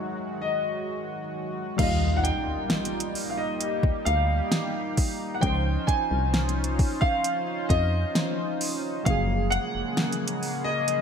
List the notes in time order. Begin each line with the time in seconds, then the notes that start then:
Already playing: D#3 F#3 G#3 F#4 E5
0.41 D#5
1.77 D#2 G3 A#3 D#4 F5, kick, closed hi-hat, crash, impact
1.81 F4 D#5
2.17 F#5
2.24 G5, closed hi-hat
2.48 D2
2.70 snare, closed hi-hat
2.85 closed hi-hat
3.00 closed hi-hat
3.15 open hi-hat
3.30 F5
3.37 D#5
3.61 G4, closed hi-hat
3.83 D2, kick
4.05 D2 F5, closed hi-hat
4.52 snare, closed hi-hat
4.97 kick, open hi-hat
5.34 F#5
5.40 C#2 F3 C#4 F4 C5 G5, kick, closed hi-hat
5.45 D#4 C5
5.87 G#5, kick, closed hi-hat
6.11 C2
6.34 snare, closed hi-hat
6.49 closed hi-hat
6.64 closed hi-hat
6.79 kick, open hi-hat
7.01 F5, kick
7.24 closed hi-hat
7.69 F2 D#5, kick, closed hi-hat
8.15 F3 C#4 D#4 C5, snare, closed hi-hat
8.61 open hi-hat
9.04 F#1 C#3 F#3 A#3 F5, kick, closed hi-hat
9.08 F3 G#4
9.50 F#5, closed hi-hat
9.75 F1
9.97 snare, closed hi-hat
10.12 closed hi-hat
10.28 closed hi-hat
10.43 open hi-hat
10.64 D#5
10.88 closed hi-hat